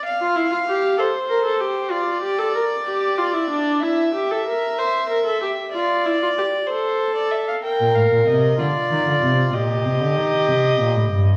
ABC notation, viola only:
X:1
M:12/8
L:1/16
Q:3/8=63
K:Bb
V:1 name="Viola"
z F =E F G2 A2 B A G2 F2 G A B2 G2 F E D2 | =E2 G A B2 c2 B A G2 F2 E F G2 A6 | B6 F6 G12 |]